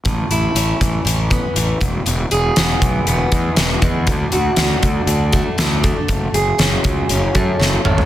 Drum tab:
HH |x-x-x-x-x-x-x-x-|x-x-x-x-x-x-x-x-|x-x-x-x-x-x-x-x-|x-x-x-x-x-x-----|
SD |----------------|----o-------o---|----o-------o---|----o-------o---|
T2 |----------------|----------------|----------------|--------------o-|
FT |----------------|----------------|----------------|---------------o|
BD |o-----o---o---o-|------o---o---o-|o-----o---o---o-|o-----o---o-----|